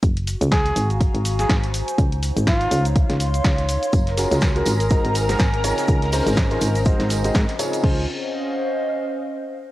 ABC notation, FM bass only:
X:1
M:4/4
L:1/16
Q:"Swing 16ths" 1/4=123
K:Db
V:1 name="FM bass" clef=bass
G,,,3 D,,3 A,,,3 A,,,3 A,,,3 z | D,,3 A,,,3 D,,3 D,,3 D,,3 z | G,,,3 D,,3 A,,,3 A,,,3 A,,,3 z | D,,3 A,,,3 A,,,3 A,,,3 A,, z3 |
D,,2 z12 z2 |]